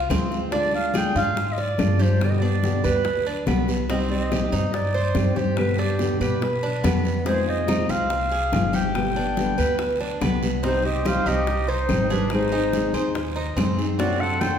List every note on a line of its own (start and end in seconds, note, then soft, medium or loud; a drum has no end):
0.09 1.10 D2 medium
0.09 0.30 C3 medium
0.09 0.30 F3 medium
0.09 0.31 G#3 medium
0.09 0.51 C4 medium
0.09 0.30 C4 medium
0.09 0.29 F4 medium
0.09 high bongo soft
0.09 low bongo medium
0.09 high conga medium
0.09 short guiro medium
0.09 claves medium
0.31 0.51 G#3 soft
0.31 0.52 C4 soft
0.31 0.51 F4 soft
0.31 high bongo soft
0.31 short guiro medium
0.51 0.72 D3 medium
0.51 0.73 G#3 medium
0.51 0.93 D4 medium
0.51 0.73 D4 medium
0.51 0.72 F4 medium
0.51 0.73 D5 loud
0.51 high bongo medium
0.51 high conga soft
0.51 long guiro medium
0.72 0.93 G#3 soft
0.72 0.94 D4 soft
0.72 0.94 F4 soft
0.72 0.98 F5 medium
0.72 high conga soft
0.93 1.14 D3 medium
0.93 1.15 G#3 medium
0.93 1.15 D4 medium
0.93 1.13 F4 medium
0.93 1.15 G#4 medium
0.93 1.17 G5 loud
0.93 high bongo medium
0.93 high conga medium
0.93 short guiro medium
0.93 claves medium
1.14 1.75 G#2 medium
1.14 1.34 G#3 soft
1.14 1.35 D4 soft
1.14 1.35 F4 medium
1.14 1.57 F4 medium
1.14 1.54 F5 loud
1.14 high bongo soft
1.14 high conga soft
1.14 short guiro medium
1.35 muted nylon-string guitar stroke medium
1.35 high bongo medium
1.35 high conga soft
1.35 long guiro medium
1.52 1.62 D#5 medium
1.58 1.99 D5 medium
1.58 2.03 D5 loud
1.58 high bongo soft
1.58 high conga soft
1.77 2.78 G2 medium
1.77 1.98 D3 medium
1.77 1.99 G#3 medium
1.77 1.99 D4 medium
1.77 1.98 F4 medium
1.77 high bongo soft
1.77 low bongo medium
1.77 high conga medium
1.77 short guiro medium
1.77 claves medium
1.99 2.21 G#3 soft
1.99 2.21 D4 soft
1.99 2.20 F4 soft
1.99 2.41 G4 medium
1.99 2.25 C5 medium
1.99 high bongo soft
1.99 high conga medium
1.99 short guiro medium
2.20 2.41 B2 medium
2.20 2.42 D3 medium
2.20 2.42 G3 medium
2.20 2.41 B3 medium
2.20 2.40 G4 medium
2.20 2.31 D5 medium
2.20 high bongo medium
2.20 high conga soft
2.20 long guiro medium
2.20 claves medium
2.30 2.41 D#5 medium
2.39 2.63 B3 soft
2.39 2.83 D4 medium
2.39 2.62 G4 soft
2.39 3.07 D5 medium
2.39 high conga soft
2.43 2.63 G3 soft
2.63 2.83 B2 medium
2.63 2.83 D3 medium
2.63 2.84 G3 medium
2.63 2.84 B3 medium
2.63 2.83 G4 medium
2.63 high bongo medium
2.63 high conga medium
2.63 short guiro medium
2.84 3.44 D2 medium
2.84 3.04 G3 soft
2.84 3.05 B3 soft
2.84 3.05 G4 soft
2.84 3.25 B4 medium
2.84 high bongo soft
2.84 high conga soft
2.84 short guiro medium
2.84 claves medium
3.05 muted nylon-string guitar stroke medium
3.05 high bongo medium
3.05 high conga soft
3.05 long guiro medium
3.26 3.47 D4 medium
3.26 high bongo soft
3.26 high conga soft
3.46 4.47 C2 medium
3.46 3.67 B2 medium
3.46 3.67 D3 medium
3.46 3.68 G3 medium
3.46 3.89 B3 medium
3.46 3.67 B3 medium
3.46 3.66 G4 medium
3.46 high bongo soft
3.46 low bongo medium
3.46 high conga medium
3.46 short guiro medium
3.46 claves medium
3.68 3.89 G3 soft
3.68 3.89 B3 soft
3.68 3.88 G4 soft
3.68 high bongo soft
3.68 short guiro medium
3.88 4.09 C3 medium
3.88 4.10 D#3 medium
3.88 4.10 G3 medium
3.88 4.31 C4 medium
3.88 4.10 C4 medium
3.88 4.09 G4 medium
3.88 4.00 D#5 medium
3.88 high bongo medium
3.88 high conga soft
3.88 long guiro medium
4.10 4.31 G3 soft
4.10 4.31 C4 soft
4.10 4.31 G4 soft
4.10 4.70 D#5 medium
4.10 high conga soft
4.30 4.51 C3 medium
4.30 4.52 D#3 medium
4.30 4.52 G3 medium
4.30 4.51 C4 medium
4.30 4.52 G4 medium
4.30 4.50 G4 medium
4.30 high bongo medium
4.30 high conga medium
4.30 short guiro medium
4.30 claves medium
4.51 5.12 G2 medium
4.51 4.72 G3 soft
4.51 4.72 C4 soft
4.51 4.94 D#4 medium
4.51 4.72 G4 soft
4.51 high bongo soft
4.51 high conga soft
4.51 short guiro medium
4.72 5.39 D5 medium
4.72 muted nylon-string guitar stroke medium
4.72 high bongo medium
4.72 high conga soft
4.72 long guiro medium
4.94 5.36 C5 medium
4.94 high bongo soft
4.94 high conga soft
5.14 6.15 G2 medium
5.14 5.35 C3 medium
5.14 5.35 D#3 medium
5.14 5.36 G3 medium
5.14 5.35 C4 medium
5.14 5.34 G4 medium
5.14 high bongo soft
5.14 low bongo medium
5.14 high conga medium
5.14 short guiro medium
5.14 claves medium
5.35 5.56 G3 soft
5.35 5.57 C4 soft
5.35 5.57 G4 soft
5.35 5.78 G4 medium
5.35 5.57 C5 medium
5.35 high bongo soft
5.35 high conga medium
5.35 short guiro medium
5.56 5.77 B2 medium
5.56 5.78 D3 medium
5.56 5.78 G3 medium
5.56 5.77 B3 medium
5.56 5.76 G4 medium
5.56 5.81 B4 medium
5.56 high bongo medium
5.56 high conga soft
5.56 long guiro medium
5.56 claves medium
5.77 5.99 G3 soft
5.77 5.99 B3 soft
5.77 6.20 D4 medium
5.77 5.99 G4 soft
5.77 6.21 G4 medium
5.77 high conga soft
5.99 6.20 B2 medium
5.99 6.20 D3 medium
5.99 6.21 G3 medium
5.99 6.19 B3 medium
5.99 6.19 G4 medium
5.99 high bongo medium
5.99 high conga medium
5.99 short guiro medium
6.20 6.80 B2 medium
6.20 6.41 G3 soft
6.20 6.41 B3 soft
6.20 6.41 G4 soft
6.20 6.45 G4 medium
6.20 6.62 B4 medium
6.20 high bongo soft
6.20 high conga soft
6.20 short guiro medium
6.20 claves medium
6.41 7.06 B4 medium
6.41 muted nylon-string guitar stroke medium
6.41 high bongo medium
6.41 high conga soft
6.41 long guiro medium
6.63 6.84 D4 medium
6.63 high bongo soft
6.63 high conga soft
6.83 7.84 F2 medium
6.83 7.04 B2 medium
6.83 7.04 D3 medium
6.83 7.05 G3 medium
6.83 7.25 B3 medium
6.83 7.04 B3 medium
6.83 7.02 G4 medium
6.83 high bongo soft
6.83 low bongo medium
6.83 high conga medium
6.83 short guiro medium
6.83 claves medium
7.04 7.25 G3 soft
7.04 7.26 B3 soft
7.04 7.25 G4 soft
7.04 high bongo soft
7.04 short guiro medium
7.24 7.46 C3 medium
7.24 7.46 D#3 medium
7.24 7.46 G#3 medium
7.24 7.67 G#3 medium
7.24 7.46 C4 medium
7.24 7.44 F4 medium
7.24 7.51 C5 medium
7.24 high bongo medium
7.24 high conga soft
7.24 long guiro medium
7.46 7.67 G#3 soft
7.46 7.68 C4 soft
7.46 7.67 F4 soft
7.46 7.92 D#5 loud
7.46 high conga soft
7.67 7.88 C3 medium
7.67 7.88 D#3 medium
7.67 7.89 G#3 medium
7.67 7.89 C4 medium
7.67 7.89 D#4 medium
7.67 7.88 F4 medium
7.67 high bongo medium
7.67 high conga medium
7.67 short guiro medium
7.67 claves medium
7.89 8.49 C2 medium
7.89 8.10 G#3 soft
7.89 8.31 C4 medium
7.89 8.10 C4 soft
7.89 8.10 F4 soft
7.89 8.77 F5 loud
7.89 high bongo soft
7.89 high conga soft
7.89 short guiro medium
8.10 muted nylon-string guitar stroke medium
8.10 high bongo medium
8.10 high conga soft
8.10 long guiro medium
8.31 8.73 G#4 medium
8.31 high bongo soft
8.31 high conga soft
8.51 9.52 G1 medium
8.51 8.72 C3 medium
8.51 8.73 D#3 medium
8.51 8.73 G#3 medium
8.51 8.73 C4 medium
8.51 8.72 F4 medium
8.51 high bongo soft
8.51 low bongo medium
8.51 high conga medium
8.51 short guiro medium
8.51 claves medium
8.73 8.95 G#3 soft
8.73 8.95 C4 soft
8.73 8.94 F4 soft
8.73 9.14 G4 medium
8.73 10.22 G5 loud
8.73 high bongo soft
8.73 high conga medium
8.73 short guiro medium
8.94 9.15 B2 medium
8.94 9.15 D3 medium
8.94 9.16 G3 medium
8.94 9.16 B3 medium
8.94 9.14 G4 medium
8.94 high bongo medium
8.94 high conga soft
8.94 long guiro medium
8.94 claves medium
9.15 9.36 G3 soft
9.15 9.37 B3 soft
9.15 9.57 D4 medium
9.15 9.36 G4 soft
9.15 high conga soft
9.36 9.57 B2 medium
9.36 9.57 D3 medium
9.36 9.57 G3 medium
9.36 9.58 B3 medium
9.36 9.57 G4 medium
9.36 high bongo medium
9.36 high conga medium
9.36 short guiro medium
9.58 10.17 D2 medium
9.58 9.79 G3 soft
9.58 9.79 B3 soft
9.58 9.78 G4 medium
9.58 9.99 B4 medium
9.58 high bongo soft
9.58 high conga soft
9.58 short guiro medium
9.58 claves medium
9.79 muted nylon-string guitar stroke medium
9.79 high bongo medium
9.79 high conga soft
9.79 long guiro medium
10.00 10.21 D4 medium
10.00 high bongo soft
10.00 high conga soft
10.21 11.20 C2 medium
10.21 10.41 B2 medium
10.21 10.42 D3 medium
10.21 10.42 G3 medium
10.21 10.62 B3 medium
10.21 10.42 B3 medium
10.21 10.42 G4 medium
10.21 high bongo soft
10.21 low bongo medium
10.21 high conga medium
10.21 short guiro medium
10.21 claves medium
10.43 10.63 G3 soft
10.43 10.63 B3 soft
10.43 10.63 G4 soft
10.43 high bongo soft
10.43 short guiro medium
10.63 10.83 C3 medium
10.63 10.84 D#3 medium
10.63 10.84 G3 medium
10.63 11.04 C4 medium
10.63 10.84 C4 medium
10.63 10.83 D#4 medium
10.63 10.83 G4 medium
10.63 10.83 C5 loud
10.63 high bongo medium
10.63 high conga soft
10.63 long guiro medium
10.84 11.05 G3 soft
10.84 11.05 C4 soft
10.84 11.04 G4 soft
10.84 11.06 G4 medium
10.84 11.08 D#5 medium
10.84 high conga soft
11.05 11.25 C3 medium
11.05 11.26 D#3 medium
11.05 11.26 G3 medium
11.05 11.26 C4 medium
11.05 11.26 G4 medium
11.05 11.25 G4 medium
11.05 11.28 C5 medium
11.05 11.29 F5 loud
11.05 high bongo medium
11.05 high conga medium
11.05 short guiro medium
11.05 claves medium
11.26 11.85 C2 medium
11.26 11.48 G3 soft
11.26 11.47 C4 soft
11.26 11.67 D#4 medium
11.26 11.46 G4 medium
11.26 11.70 G4 medium
11.26 11.71 D#5 loud
11.26 high bongo soft
11.26 high conga soft
11.26 short guiro medium
11.47 muted nylon-string guitar stroke medium
11.47 high bongo medium
11.47 high conga soft
11.47 long guiro medium
11.67 12.13 D#4 medium
11.67 12.09 C5 medium
11.67 12.14 C5 medium
11.67 high bongo soft
11.67 high conga soft
11.89 12.88 G#1 medium
11.89 12.09 C3 medium
11.89 12.10 D#3 medium
11.89 12.10 G3 medium
11.89 12.11 C4 medium
11.89 12.09 G4 medium
11.89 high bongo soft
11.89 low bongo medium
11.89 high conga medium
11.89 short guiro medium
11.89 claves medium
12.10 12.32 G3 soft
12.10 12.31 C4 soft
12.10 12.32 D4 medium
12.10 12.30 G4 soft
12.10 12.51 G#4 medium
12.10 12.32 B4 medium
12.10 high bongo soft
12.10 high conga medium
12.10 short guiro medium
12.30 12.52 D#3 medium
12.30 12.52 G#3 medium
12.30 12.52 C4 medium
12.30 13.12 D#4 medium
12.30 12.52 D#4 medium
12.30 12.51 G#4 medium
12.30 high bongo medium
12.30 high conga soft
12.30 long guiro medium
12.30 claves medium
12.34 13.13 C5 medium
12.52 12.74 C4 soft
12.52 12.93 D#4 medium
12.52 12.73 D#4 soft
12.52 12.72 G#4 soft
12.52 high conga soft
12.73 12.94 D#3 medium
12.73 12.94 G#3 medium
12.73 12.94 C4 medium
12.73 12.94 D#4 medium
12.73 12.93 G#4 medium
12.73 high bongo medium
12.73 high conga medium
12.73 short guiro medium
12.93 13.53 D#2 medium
12.93 13.16 C4 soft
12.93 13.15 D#4 soft
12.93 13.15 G#4 soft
12.93 13.35 C5 medium
12.93 high bongo soft
12.93 high conga soft
12.93 short guiro medium
12.93 claves medium
13.15 muted nylon-string guitar stroke medium
13.15 high bongo medium
13.15 high conga soft
13.15 long guiro medium
13.36 13.56 D#4 medium
13.36 high bongo soft
13.36 high conga soft
13.56 14.55 F#2 medium
13.56 13.77 D#3 medium
13.56 13.77 G#3 medium
13.56 13.98 C4 medium
13.56 13.78 C4 medium
13.56 13.78 D#4 medium
13.56 13.78 G#4 medium
13.56 high bongo soft
13.56 low bongo medium
13.56 high conga medium
13.56 short guiro medium
13.56 claves medium
13.79 14.00 C4 soft
13.79 13.99 D#4 soft
13.79 13.99 G#4 soft
13.79 high bongo soft
13.79 short guiro medium
13.98 14.19 C3 medium
13.98 14.19 F#3 medium
13.98 14.20 A3 medium
13.98 14.40 C4 medium
13.98 14.20 D4 medium
13.98 14.22 F#4 medium
13.98 14.18 F#4 medium
13.98 14.22 D5 loud
13.98 high bongo medium
13.98 high conga soft
13.98 long guiro medium
14.20 14.41 A3 soft
14.20 14.41 D4 soft
14.20 14.40 F#4 soft
14.20 14.42 A4 medium
14.20 14.42 F#5 loud
14.20 high conga soft
14.40 14.59 C3 medium
14.40 14.59 F#3 medium
14.40 14.59 A3 medium
14.40 14.59 D4 medium
14.40 14.59 F#4 medium
14.40 14.59 A4 medium
14.40 14.59 C5 medium
14.40 14.59 G5 loud
14.40 high bongo medium
14.40 high conga medium
14.40 short guiro medium
14.40 claves medium